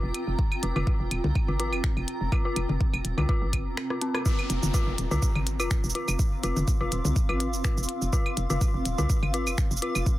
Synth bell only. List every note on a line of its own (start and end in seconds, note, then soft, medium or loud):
0.63 0.69 F4 medium
0.76 0.81 F4 loud
1.48 1.53 F4 medium
1.60 1.65 F4 loud
2.32 2.38 F4 medium
2.45 2.50 F4 loud
3.18 3.23 F4 medium
3.29 3.35 F4 loud
3.90 3.95 F4 medium
4.02 4.10 C4 medium
4.14 4.22 F4 medium
4.26 4.31 F4 loud
4.74 4.83 F4 loud
5.11 5.16 F4 loud
5.60 5.67 F4 loud
5.95 6.01 F4 loud
6.43 6.52 F4 loud
6.81 6.86 F4 loud
7.29 7.36 F4 loud
7.64 7.70 F4 loud
8.13 8.21 F4 loud
8.50 8.55 F4 loud
8.98 9.06 F4 loud
9.34 9.40 F4 loud
9.82 9.91 F4 loud